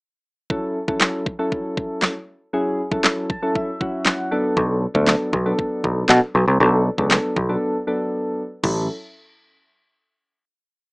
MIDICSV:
0, 0, Header, 1, 4, 480
1, 0, Start_track
1, 0, Key_signature, 3, "major"
1, 0, Tempo, 508475
1, 473, Time_signature, 4, 2, 24, 8
1, 10311, End_track
2, 0, Start_track
2, 0, Title_t, "Synth keys"
2, 0, Program_c, 0, 88
2, 471, Note_on_c, 0, 54, 83
2, 473, Note_on_c, 0, 61, 74
2, 474, Note_on_c, 0, 64, 76
2, 476, Note_on_c, 0, 69, 92
2, 735, Note_off_c, 0, 54, 0
2, 736, Note_off_c, 0, 61, 0
2, 736, Note_off_c, 0, 64, 0
2, 737, Note_off_c, 0, 69, 0
2, 831, Note_on_c, 0, 54, 81
2, 833, Note_on_c, 0, 61, 77
2, 834, Note_on_c, 0, 64, 75
2, 836, Note_on_c, 0, 69, 89
2, 1182, Note_off_c, 0, 54, 0
2, 1183, Note_off_c, 0, 61, 0
2, 1184, Note_off_c, 0, 64, 0
2, 1185, Note_off_c, 0, 69, 0
2, 1311, Note_on_c, 0, 54, 83
2, 1312, Note_on_c, 0, 61, 77
2, 1314, Note_on_c, 0, 64, 76
2, 1315, Note_on_c, 0, 69, 92
2, 2012, Note_off_c, 0, 54, 0
2, 2013, Note_off_c, 0, 61, 0
2, 2014, Note_off_c, 0, 64, 0
2, 2014, Note_off_c, 0, 69, 0
2, 2390, Note_on_c, 0, 54, 84
2, 2392, Note_on_c, 0, 61, 77
2, 2394, Note_on_c, 0, 64, 76
2, 2395, Note_on_c, 0, 68, 93
2, 2654, Note_off_c, 0, 54, 0
2, 2655, Note_off_c, 0, 61, 0
2, 2656, Note_off_c, 0, 64, 0
2, 2657, Note_off_c, 0, 68, 0
2, 2751, Note_on_c, 0, 54, 83
2, 2752, Note_on_c, 0, 61, 73
2, 2753, Note_on_c, 0, 64, 75
2, 2756, Note_on_c, 0, 69, 88
2, 3102, Note_off_c, 0, 54, 0
2, 3103, Note_off_c, 0, 61, 0
2, 3103, Note_off_c, 0, 64, 0
2, 3105, Note_off_c, 0, 69, 0
2, 3114, Note_on_c, 0, 81, 73
2, 3231, Note_on_c, 0, 54, 84
2, 3233, Note_on_c, 0, 61, 79
2, 3235, Note_on_c, 0, 64, 79
2, 3237, Note_on_c, 0, 69, 93
2, 3337, Note_off_c, 0, 81, 0
2, 3355, Note_on_c, 0, 76, 74
2, 3495, Note_off_c, 0, 54, 0
2, 3496, Note_off_c, 0, 61, 0
2, 3497, Note_off_c, 0, 64, 0
2, 3498, Note_off_c, 0, 69, 0
2, 3592, Note_on_c, 0, 54, 80
2, 3593, Note_on_c, 0, 61, 71
2, 3595, Note_on_c, 0, 64, 74
2, 3596, Note_on_c, 0, 66, 87
2, 3801, Note_off_c, 0, 76, 0
2, 3834, Note_on_c, 0, 78, 71
2, 4060, Note_off_c, 0, 54, 0
2, 4072, Note_on_c, 0, 54, 90
2, 4073, Note_off_c, 0, 61, 0
2, 4073, Note_on_c, 0, 59, 81
2, 4074, Note_off_c, 0, 64, 0
2, 4075, Note_off_c, 0, 66, 0
2, 4075, Note_on_c, 0, 62, 83
2, 4077, Note_on_c, 0, 69, 97
2, 4280, Note_off_c, 0, 78, 0
2, 4553, Note_off_c, 0, 54, 0
2, 4553, Note_off_c, 0, 59, 0
2, 4554, Note_off_c, 0, 62, 0
2, 4555, Note_off_c, 0, 69, 0
2, 4671, Note_on_c, 0, 54, 82
2, 4673, Note_on_c, 0, 59, 76
2, 4674, Note_on_c, 0, 62, 77
2, 4676, Note_on_c, 0, 69, 90
2, 5022, Note_off_c, 0, 54, 0
2, 5023, Note_off_c, 0, 59, 0
2, 5024, Note_off_c, 0, 62, 0
2, 5025, Note_off_c, 0, 69, 0
2, 5151, Note_on_c, 0, 54, 86
2, 5152, Note_on_c, 0, 59, 79
2, 5154, Note_on_c, 0, 62, 78
2, 5156, Note_on_c, 0, 69, 95
2, 5852, Note_off_c, 0, 54, 0
2, 5853, Note_off_c, 0, 59, 0
2, 5854, Note_off_c, 0, 62, 0
2, 5855, Note_off_c, 0, 69, 0
2, 6230, Note_on_c, 0, 54, 84
2, 6232, Note_on_c, 0, 59, 78
2, 6234, Note_on_c, 0, 62, 77
2, 6235, Note_on_c, 0, 69, 92
2, 6494, Note_off_c, 0, 54, 0
2, 6495, Note_off_c, 0, 59, 0
2, 6496, Note_off_c, 0, 62, 0
2, 6497, Note_off_c, 0, 69, 0
2, 6590, Note_on_c, 0, 54, 79
2, 6592, Note_on_c, 0, 59, 78
2, 6593, Note_on_c, 0, 62, 75
2, 6595, Note_on_c, 0, 69, 90
2, 6942, Note_off_c, 0, 54, 0
2, 6943, Note_off_c, 0, 59, 0
2, 6943, Note_off_c, 0, 62, 0
2, 6944, Note_off_c, 0, 69, 0
2, 7071, Note_on_c, 0, 54, 84
2, 7072, Note_on_c, 0, 59, 78
2, 7074, Note_on_c, 0, 62, 76
2, 7075, Note_on_c, 0, 69, 92
2, 7335, Note_off_c, 0, 54, 0
2, 7335, Note_off_c, 0, 59, 0
2, 7336, Note_off_c, 0, 62, 0
2, 7337, Note_off_c, 0, 69, 0
2, 7431, Note_on_c, 0, 54, 82
2, 7432, Note_on_c, 0, 59, 73
2, 7434, Note_on_c, 0, 62, 72
2, 7436, Note_on_c, 0, 69, 88
2, 7957, Note_off_c, 0, 54, 0
2, 7958, Note_off_c, 0, 59, 0
2, 7959, Note_off_c, 0, 62, 0
2, 7960, Note_off_c, 0, 69, 0
2, 8153, Note_on_c, 0, 61, 74
2, 8153, Note_on_c, 0, 69, 91
2, 8154, Note_on_c, 0, 54, 79
2, 8154, Note_on_c, 0, 64, 77
2, 8376, Note_off_c, 0, 69, 0
2, 8377, Note_off_c, 0, 54, 0
2, 8377, Note_off_c, 0, 61, 0
2, 8377, Note_off_c, 0, 64, 0
2, 10311, End_track
3, 0, Start_track
3, 0, Title_t, "Picked electric bass"
3, 0, Program_c, 1, 34
3, 4313, Note_on_c, 1, 35, 96
3, 4580, Note_off_c, 1, 35, 0
3, 4672, Note_on_c, 1, 38, 95
3, 4850, Note_off_c, 1, 38, 0
3, 5033, Note_on_c, 1, 35, 88
3, 5211, Note_off_c, 1, 35, 0
3, 5514, Note_on_c, 1, 35, 84
3, 5692, Note_off_c, 1, 35, 0
3, 5753, Note_on_c, 1, 47, 92
3, 5842, Note_off_c, 1, 47, 0
3, 5993, Note_on_c, 1, 35, 89
3, 6082, Note_off_c, 1, 35, 0
3, 6113, Note_on_c, 1, 36, 86
3, 6202, Note_off_c, 1, 36, 0
3, 6233, Note_on_c, 1, 35, 100
3, 6500, Note_off_c, 1, 35, 0
3, 6591, Note_on_c, 1, 37, 86
3, 6770, Note_off_c, 1, 37, 0
3, 6952, Note_on_c, 1, 35, 92
3, 7130, Note_off_c, 1, 35, 0
3, 8153, Note_on_c, 1, 33, 90
3, 8376, Note_off_c, 1, 33, 0
3, 10311, End_track
4, 0, Start_track
4, 0, Title_t, "Drums"
4, 472, Note_on_c, 9, 36, 107
4, 567, Note_off_c, 9, 36, 0
4, 832, Note_on_c, 9, 36, 96
4, 926, Note_off_c, 9, 36, 0
4, 947, Note_on_c, 9, 38, 87
4, 952, Note_on_c, 9, 39, 110
4, 1041, Note_off_c, 9, 38, 0
4, 1046, Note_off_c, 9, 39, 0
4, 1193, Note_on_c, 9, 36, 91
4, 1287, Note_off_c, 9, 36, 0
4, 1435, Note_on_c, 9, 36, 76
4, 1529, Note_off_c, 9, 36, 0
4, 1674, Note_on_c, 9, 36, 89
4, 1768, Note_off_c, 9, 36, 0
4, 1905, Note_on_c, 9, 38, 80
4, 1910, Note_on_c, 9, 39, 99
4, 2000, Note_off_c, 9, 38, 0
4, 2004, Note_off_c, 9, 39, 0
4, 2752, Note_on_c, 9, 36, 96
4, 2847, Note_off_c, 9, 36, 0
4, 2868, Note_on_c, 9, 38, 92
4, 2873, Note_on_c, 9, 39, 111
4, 2962, Note_off_c, 9, 38, 0
4, 2967, Note_off_c, 9, 39, 0
4, 3113, Note_on_c, 9, 36, 86
4, 3208, Note_off_c, 9, 36, 0
4, 3355, Note_on_c, 9, 36, 78
4, 3450, Note_off_c, 9, 36, 0
4, 3594, Note_on_c, 9, 36, 85
4, 3689, Note_off_c, 9, 36, 0
4, 3826, Note_on_c, 9, 38, 82
4, 3831, Note_on_c, 9, 39, 103
4, 3920, Note_off_c, 9, 38, 0
4, 3925, Note_off_c, 9, 39, 0
4, 4313, Note_on_c, 9, 36, 109
4, 4407, Note_off_c, 9, 36, 0
4, 4672, Note_on_c, 9, 36, 97
4, 4766, Note_off_c, 9, 36, 0
4, 4787, Note_on_c, 9, 38, 90
4, 4792, Note_on_c, 9, 39, 113
4, 4882, Note_off_c, 9, 38, 0
4, 4886, Note_off_c, 9, 39, 0
4, 5033, Note_on_c, 9, 36, 87
4, 5127, Note_off_c, 9, 36, 0
4, 5274, Note_on_c, 9, 36, 78
4, 5369, Note_off_c, 9, 36, 0
4, 5514, Note_on_c, 9, 36, 89
4, 5608, Note_off_c, 9, 36, 0
4, 5745, Note_on_c, 9, 38, 82
4, 5749, Note_on_c, 9, 39, 106
4, 5839, Note_off_c, 9, 38, 0
4, 5844, Note_off_c, 9, 39, 0
4, 6591, Note_on_c, 9, 36, 95
4, 6686, Note_off_c, 9, 36, 0
4, 6707, Note_on_c, 9, 38, 92
4, 6712, Note_on_c, 9, 39, 111
4, 6801, Note_off_c, 9, 38, 0
4, 6806, Note_off_c, 9, 39, 0
4, 6952, Note_on_c, 9, 36, 90
4, 7047, Note_off_c, 9, 36, 0
4, 8152, Note_on_c, 9, 49, 84
4, 8153, Note_on_c, 9, 36, 98
4, 8247, Note_off_c, 9, 36, 0
4, 8247, Note_off_c, 9, 49, 0
4, 10311, End_track
0, 0, End_of_file